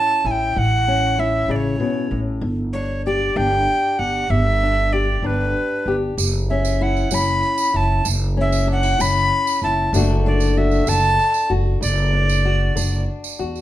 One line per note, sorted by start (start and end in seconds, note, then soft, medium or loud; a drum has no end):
0.00 0.18 E3 medium
0.00 0.52 C#4 medium
0.00 0.25 E4 medium
0.00 0.28 A5 loud
0.24 0.54 A1 loud
0.24 1.18 E4 medium
0.24 0.32 G#5 medium
0.31 0.60 G5 medium
0.56 1.45 A1 loud
0.56 1.12 A2 medium
0.56 1.21 F#5 loud
0.88 2.39 C#4 medium
1.18 2.78 E4 medium
1.18 1.53 E5 loud
1.48 1.78 A1 medium
1.48 1.79 C#3 medium
1.48 1.57 D5 medium
1.56 2.20 C#5 medium
1.80 2.11 B2 medium
2.11 2.41 A1 loud
2.11 2.43 A2 medium
2.41 3.32 G1 loud
2.41 2.98 G2 medium
2.73 3.36 D4 medium
2.73 3.02 C#5 loud
3.06 3.98 G4 medium
3.06 3.38 D5 loud
3.36 3.66 G1 medium
3.36 3.92 E3 medium
3.36 4.26 D4 medium
3.36 4.00 G5 loud
3.99 4.29 G1 medium
3.99 4.26 G4 medium
3.99 4.32 F#5 loud
4.30 5.20 G1 loud
4.30 4.86 G2 medium
4.30 4.94 E5 loud
4.63 5.23 D4 medium
4.93 5.87 G4 medium
4.93 5.28 D5 loud
5.22 5.53 G1 medium
5.22 5.80 E3 medium
5.22 6.14 D4 medium
5.22 5.96 B4 medium
5.86 6.16 G1 medium
5.86 6.15 G4 medium
6.17 7.08 F#1 loud
6.17 6.74 F#2 medium
6.17 tambourine loud
6.50 7.12 C#4 medium
6.50 6.84 E5 medium
6.65 tambourine medium
6.81 7.72 E4 medium
6.81 7.16 F#5 loud
6.97 tambourine soft
7.11 7.41 F#1 medium
7.11 7.68 F#3 medium
7.11 8.02 C#4 medium
7.11 7.78 B5 loud
7.11 tambourine medium
7.27 tambourine soft
7.43 tambourine soft
7.58 tambourine medium
7.74 8.04 F#1 medium
7.74 8.02 E4 medium
7.74 8.07 A5 medium
8.05 8.96 F#1 loud
8.05 8.62 F#2 medium
8.05 tambourine loud
8.37 8.99 C#4 medium
8.37 8.68 E5 medium
8.52 tambourine medium
8.67 8.83 D4 medium
8.72 9.03 F#5 loud
8.83 9.62 E4 soft
8.83 tambourine soft
8.99 9.30 F#1 medium
8.99 9.56 F#3 medium
8.99 9.90 C#4 medium
8.99 9.63 B5 loud
8.99 tambourine medium
9.17 tambourine soft
9.47 tambourine medium
9.62 9.92 F#1 medium
9.62 9.91 E4 medium
9.62 9.92 A5 medium
9.93 10.83 F#1 loud
9.93 10.50 F#2 medium
9.93 10.86 D3 medium
9.93 13.45 A3 medium
9.93 10.26 D4 medium
9.93 10.57 F#4 medium
9.93 tambourine medium
10.26 10.88 D4 medium
10.26 10.59 D5 medium
10.40 tambourine medium
10.57 11.49 F#4 medium
10.57 10.90 E5 medium
10.71 tambourine soft
10.87 11.17 F#1 loud
10.87 11.44 D3 medium
10.87 11.78 D4 medium
10.87 11.51 A5 loud
10.87 tambourine medium
11.04 tambourine soft
11.19 tambourine soft
11.34 tambourine medium
11.50 11.80 F#1 medium
11.50 11.78 F#4 medium
11.81 12.72 F#1 loud
11.81 12.38 F#2 medium
11.81 13.04 D5 loud
11.81 tambourine medium
11.98 tambourine soft
12.13 12.75 D4 medium
12.29 tambourine medium
12.45 13.38 F#4 medium
12.76 13.06 F#1 medium
12.76 13.32 D3 medium
12.76 13.61 D4 medium
12.76 tambourine medium
13.24 tambourine medium
13.39 13.61 E2 medium
13.39 13.61 F#4 medium
13.56 tambourine soft